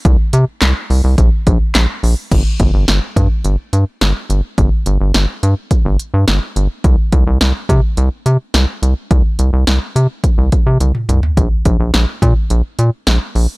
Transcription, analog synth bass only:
X:1
M:4/4
L:1/16
Q:1/4=106
K:Gm
V:1 name="Analog synth bass" clef=bass
C,, z C, z C,, z C,, C,, B,,, z B,,, z B,,, z B,,, z | G,,, z G,,, G,,, G,,, z G,, z G,,, z G,, z G,,, z G,,, z | G,,, z G,,, G,,, G,,, z G,, z2 G,,, z G,, G,,, z G,,, z | C,, z C,, C,, C,, z C, z C,, z C, z C,, z C,, z |
C,, z C,, C,, C,, z C, z2 C,, z C, C,, z C,, z | B,,, z B,,, B,,, B,,, z B,, z B,,, z B,, z B,,, z B,,, z |]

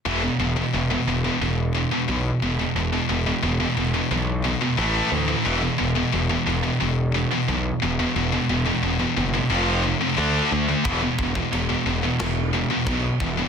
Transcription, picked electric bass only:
X:1
M:4/4
L:1/8
Q:1/4=89
K:Ador
V:1 name="Picked electric bass" clef=bass
E,,, E,,, E,,, E,,, E,,,2 B,,, E,,, | E,,, E,,, E,,, E,,, B,,,2 A,,, D,, | E,,, E,,, E,,, E,,, E,,,2 B,,, E,,, | E,,, E,,, E,,, F,,, =F,,,2 D,, D,, |
E,,, E,,, E,,, E,,, E,,,2 B,,, E,,, |]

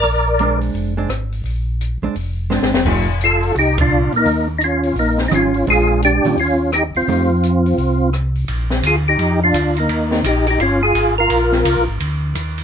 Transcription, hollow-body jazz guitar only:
X:1
M:4/4
L:1/8
Q:"Swing" 1/4=171
K:Bbmix
V:1 name="Hollow-body jazz guitar"
z2 [A,CD]3 [A,CD] z2 | z3 [A,CD] z2 [A,CD] z | [F,=A,EG] z6 z | z6 [E,G,_DF] z |
[A,CD]3 [E,G,_DF] z4 | [F,=A,EG] z6 z | z8 | z8 |
z8 |]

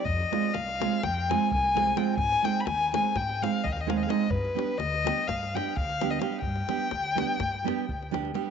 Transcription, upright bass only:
X:1
M:9/8
L:1/8
Q:3/8=85
K:none
V:1 name="Upright bass" clef=bass
F,, z C,,2 F,,2 C,,3 | _A,, z _E,,2 A,,2 E,,3 | G,, z D,,2 G,,2 D,,3 | G,, z D,,2 G,,2 D,,3 |]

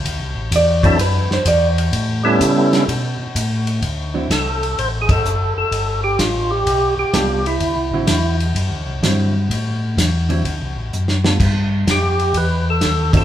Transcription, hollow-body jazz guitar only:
X:1
M:4/4
L:1/8
Q:"Swing" 1/4=127
K:Dmix
V:1 name="Hollow-body jazz guitar"
z2 d2 B c d z | z8 | z [D,F,CE] z6 | z6 [G,B,=FA] z |
z [D,F,CE] z4 [D,F,CE] z | z3 [D,F,CE] z3 [G,B,=FA] | z6 z [D,F,CE] |]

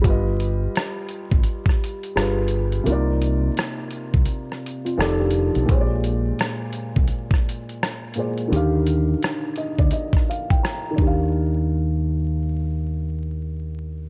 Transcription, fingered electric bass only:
X:1
M:4/4
L:1/16
Q:"Swing 16ths" 1/4=85
K:Eb
V:1 name="Fingered electric bass" clef=bass
G,,,4 z3 A,,, z4 G,,,4 | C,,4 z3 C,, z4 F,,,3 _C,, | B,,,4 z3 C,, z8 | E,,4 z3 D,, z6 E,,2- |
E,,16 |]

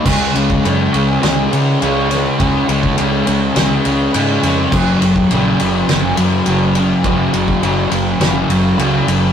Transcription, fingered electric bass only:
X:1
M:4/4
L:1/8
Q:1/4=103
K:Gblyd
V:1 name="Fingered electric bass" clef=bass
D,, D,, G,, D,, D,, D, D,,2 | D,, D,, D,, D,, D,, D,, A,, F,, | G,,, G,,, B,,, G,,, G,,, G,, G,,,2 | G,,, G,,, G,,, G,,, G,,, G,,, D,, G,,, |]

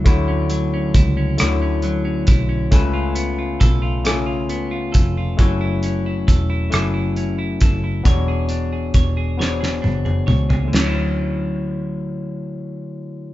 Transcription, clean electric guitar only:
X:1
M:6/8
L:1/16
Q:3/8=45
K:D
V:1 name="Clean electric guitar"
[D,E] C F, C E C [D,E] C F, C E C | [C,A] ^E B, E A E [C,A] E B, E A E | [F,A] E C E A E [F,A] E C E A E | [E,c] ^G D G c G [E,c] G D G c G |
[D,F,CE]12 |]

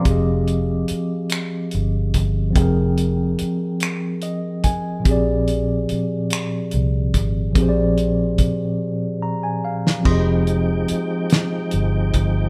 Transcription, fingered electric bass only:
X:1
M:6/8
L:1/8
Q:3/8=48
K:Fdor
V:1 name="Fingered electric bass" clef=bass
F,,,2 z2 G,,, G,,, | F,,,2 z4 | B,,,2 z2 C,, A,,, | B,,,2 z4 |
F,,,2 z2 G,,, G,,, |]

